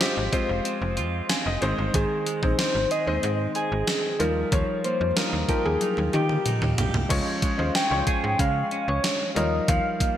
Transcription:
0.00 1.61 F3 medium
0.00 0.32 G#3 medium
0.00 2.26 G#3 medium
0.00 0.32 C4 medium
0.00 0.65 C4 medium
0.00 0.33 F4 medium
0.00 0.30 G4 medium
0.00 0.33 C5 medium
0.00 0.61 C5 medium
0.00 snare loud
0.00 closed hi-hat medium
0.17 0.29 G#1 medium
0.32 1.49 G#3 medium
0.32 1.49 C4 medium
0.32 1.49 F4 medium
0.32 0.96 F4 medium
0.32 1.49 C5 medium
0.32 kick medium
0.32 closed hi-hat medium
0.49 0.61 F1 medium
0.65 1.29 C4 medium
0.65 closed hi-hat medium
0.82 0.99 F1 medium
0.97 1.22 F2 loud
0.97 1.68 F4 medium
0.97 closed hi-hat medium
1.29 2.58 C4 medium
1.29 1.44 G#5 medium
1.29 snare medium
1.29 closed hi-hat medium
1.46 1.58 F1 loud
1.46 1.91 D#5 medium
1.61 1.74 G#1 loud
1.61 1.94 D#3 medium
1.61 2.34 G#3 medium
1.61 2.34 C4 medium
1.61 2.35 D#4 medium
1.61 2.35 C5 medium
1.61 closed hi-hat medium
1.78 1.90 G1 medium
1.94 2.06 G#1 loud
1.94 4.19 D#3 medium
1.94 2.55 G#4 loud
1.94 kick medium
1.94 closed hi-hat medium
2.26 4.26 G#3 medium
2.26 closed hi-hat medium
2.42 2.55 A#1 medium
2.42 3.00 G#3 medium
2.42 3.01 C4 medium
2.42 3.01 D#4 medium
2.42 3.01 C5 medium
2.42 kick medium
2.59 3.22 C4 medium
2.59 2.93 C5 loud
2.59 snare loud
2.59 closed hi-hat medium
2.75 2.87 G#1 medium
2.91 3.54 G#4 medium
2.91 3.09 D#5 loud
2.91 closed hi-hat medium
3.06 3.19 D#2 medium
3.06 4.20 G#3 medium
3.06 4.20 C4 medium
3.06 4.18 D#4 medium
3.06 3.58 C5 loud
3.06 4.20 D#5 medium
3.23 3.48 G#2 loud
3.23 3.86 C4 medium
3.23 closed hi-hat medium
3.55 4.26 G#4 medium
3.55 4.22 G#4 loud
3.55 closed hi-hat medium
3.72 3.84 G#1 medium
3.87 4.26 C4 medium
3.87 snare medium
3.87 closed hi-hat medium
4.19 4.44 D#2 medium
4.19 4.52 F3 medium
4.19 5.07 G3 medium
4.19 5.07 D#4 medium
4.19 5.07 F4 medium
4.19 4.52 A#4 medium
4.19 5.07 A#4 medium
4.19 closed hi-hat medium
4.52 4.64 D#2 loud
4.52 7.10 F3 medium
4.52 4.86 C#5 loud
4.52 kick medium
4.52 closed hi-hat medium
4.84 7.17 A#3 medium
4.84 5.19 C5 medium
4.84 closed hi-hat medium
5.01 5.13 F2 medium
5.16 5.45 G3 medium
5.16 5.46 D#4 medium
5.16 5.80 D#4 medium
5.16 5.46 F4 medium
5.16 5.67 A#4 medium
5.16 5.46 A#4 medium
5.16 snare loud
5.16 closed hi-hat medium
5.33 5.45 D#2 medium
5.48 6.65 F3 medium
5.48 6.65 D#4 medium
5.48 6.65 F4 medium
5.48 6.12 G4 medium
5.48 6.65 A#4 medium
5.48 kick medium
5.48 closed hi-hat medium
5.65 5.77 D#2 medium
5.65 6.15 G#4 medium
5.81 6.45 D#4 medium
5.81 closed hi-hat medium
5.81 high tom medium
5.97 6.10 D#2 medium
5.97 high tom soft
6.13 6.38 D#3 loud
6.13 6.77 G4 medium
6.13 6.78 G4 medium
6.13 closed hi-hat medium
6.13 mid tom medium
6.29 mid tom medium
6.46 7.17 D#4 medium
6.46 closed hi-hat medium
6.46 mid tom medium
6.62 6.74 D#2 medium
6.62 mid tom medium
6.78 6.90 B1 medium
6.78 7.17 G4 medium
6.78 closed hi-hat medium
6.78 floor tom medium
6.94 7.06 C2 medium
6.94 floor tom medium
7.09 7.22 C#2 loud
7.09 9.36 F3 medium
7.09 7.53 G#3 medium
7.09 7.54 C#4 medium
7.09 7.54 F4 medium
7.09 7.54 C#5 medium
7.09 kick medium
7.09 closed hi-hat medium
7.09 crash medium
7.42 8.38 G#3 medium
7.42 kick medium
7.42 closed hi-hat medium
7.58 7.71 D#2 medium
7.58 7.87 G#3 medium
7.58 7.87 C#4 medium
7.58 7.88 F4 medium
7.58 7.88 C5 medium
7.75 8.71 C#4 medium
7.75 8.42 G5 loud
7.75 snare loud
7.75 closed hi-hat medium
7.90 8.03 C#2 medium
7.90 9.07 G#3 medium
7.90 9.07 C#4 medium
7.90 9.07 F4 medium
7.90 9.07 C#5 medium
8.07 9.43 G#4 medium
8.07 kick medium
8.07 closed hi-hat medium
8.24 8.36 G#2 medium
8.39 8.64 C#3 loud
8.39 9.03 G#3 medium
8.39 8.90 F5 loud
8.39 kick medium
8.39 closed hi-hat medium
8.71 9.43 C#4 medium
8.71 closed hi-hat medium
8.88 9.00 C#2 medium
8.88 9.38 C#5 loud
9.04 9.43 G#3 medium
9.04 snare loud
9.04 closed hi-hat medium
9.35 9.60 D#2 loud
9.35 9.67 F3 medium
9.35 10.08 G3 medium
9.35 10.08 D#4 medium
9.35 10.08 F4 medium
9.35 10.09 A#4 medium
9.35 9.68 D#5 medium
9.35 closed hi-hat medium
9.68 9.81 D#2 loud
9.68 10.17 F3 medium
9.68 10.17 F5 loud
9.68 kick loud
9.68 closed hi-hat medium
10.00 10.17 A#3 medium
10.00 kick medium
10.00 closed hi-hat medium

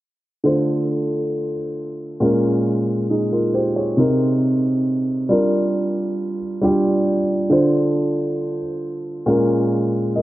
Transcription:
0.44 1.51 D3 medium
0.44 1.52 A3 medium
0.44 1.52 F4 medium
0.44 1.53 C5 medium
2.20 2.91 A#2 medium
2.20 2.92 G#3 medium
2.20 2.92 C#4 medium
2.20 2.93 A#4 medium
3.10 3.31 D#4 medium
3.10 3.31 G#4 medium
3.32 3.53 F4 medium
3.32 3.53 A#4 medium
3.54 3.75 G4 medium
3.54 3.75 C5 medium
3.76 4.18 G#4 soft
3.76 4.18 C#5 medium
3.97 5.04 C3 medium
3.97 5.05 C4 medium
3.97 5.05 D#4 medium
3.97 5.06 A#4 medium
5.29 6.35 G3 medium
5.29 6.36 D4 medium
5.29 6.36 F4 medium
5.29 6.37 A#4 medium
6.61 7.16 G3 medium
6.61 7.16 D4 medium
6.61 7.16 F4 medium
6.61 7.17 G4 medium
7.50 8.57 D3 medium
7.50 8.58 D4 medium
7.50 8.58 F4 medium
7.50 8.59 C5 medium
9.26 9.97 A#2 medium
9.26 9.98 G#3 medium
9.26 9.98 C#4 medium
9.26 9.99 A#4 loud
10.16 10.22 A#4 medium
10.16 10.22 D#5 medium

